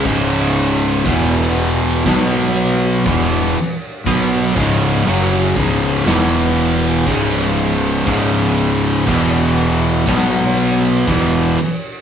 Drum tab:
CC |x---------------|----------------|----------------|
RD |--x-x-x-x-x-x-x-|x-x-x-x-x-x-x-x-|x-x-x-x-x-x-x-x-|
SD |--------o----o--|--------o----o--|--------o-------|
BD |o---o---o---o---|o-o---o-----o---|o---o---o---o---|